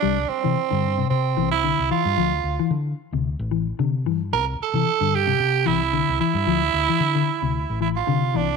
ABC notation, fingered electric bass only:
X:1
M:4/4
L:1/16
Q:"Swing 16ths" 1/4=112
K:C
V:1 name="Fingered electric bass" clef=bass
C,,2 z C, z G,,3 C,2 C,,3 C,, z G,, | D,,2 D,, z D,2 z D,,2 A,,,3 C,2 G,,2 | C,,2 z C, z G,,3 C,2 C,,3 C,, z G,, | D,,2 D,, z D,2 z D,,2 A,,,3 C,2 C,,2 |]